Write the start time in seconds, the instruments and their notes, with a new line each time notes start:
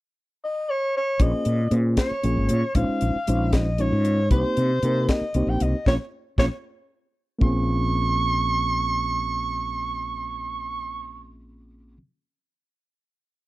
0.44 soprano saxophone D#5
0.70 soprano saxophone C#5
0.97 soprano saxophone C#5
1.19 fretless electric bass A#1, reed electric piano A#3 C#4 F4 G#4 C5, soprano saxophone D#5, kick, closed hi-hat
1.45 fretless electric bass A#2, closed hi-hat
1.71 fretless electric bass A#2, reed electric piano A#3 C#4 F4 G#4 C5, closed hi-hat
1.97 soprano saxophone C#5, kick, snare, closed hi-hat
2.11 muted fretless electric bass stroke
2.23 fretless electric bass A#1, reed electric piano A#3 C#4 F4 G#4 C#5, closed hi-hat
2.37 fretless electric bass G#1
2.49 fretless electric bass A#2, closed hi-hat
2.75 fretless electric bass A#1, reed electric piano G#3 C#4 D#4 F4 C5, soprano saxophone F5, kick, closed hi-hat
3.01 fretless electric bass A#1, closed hi-hat
3.16 muted fretless electric bass stroke
3.27 fretless electric bass A#1, reed electric piano G#3 C#4 D#4 F4 C5, closed hi-hat
3.53 soprano saxophone D#5, kick, snare, closed hi-hat
3.78 reed electric piano G#3 C#4 D#4 F4 C#5, soprano saxophone C#5, closed hi-hat
3.92 fretless electric bass G#2
4.05 closed hi-hat
4.30 fretless electric bass C2, reed electric piano A#3 C4 D#4 G4 C5, soprano saxophone C5, kick, closed hi-hat
4.57 fretless electric bass C3, closed hi-hat
4.83 fretless electric bass C3, reed electric piano A#3 C4 D#4 G4 A#4, closed hi-hat
5.09 soprano saxophone D#5, kick, snare, closed hi-hat
5.21 muted fretless electric bass stroke
5.34 fretless electric bass C2, reed electric piano A#3 C4 D#4 G4 C5, closed hi-hat
5.47 fretless electric bass A#1, soprano saxophone G5
5.60 fretless electric bass C2, soprano saxophone D#5, closed hi-hat
5.86 fretless electric bass A#1, reed electric piano A#3 C#4 F4, soprano saxophone C#5, kick, snare
6.38 fretless electric bass A#1, reed electric piano A#3 C#4 F4, soprano saxophone C#5, kick, snare
7.38 fretless electric bass A#1, reed electric piano A#3 C#4 F4, kick
7.43 reed electric piano C4 G#4, soprano saxophone C#6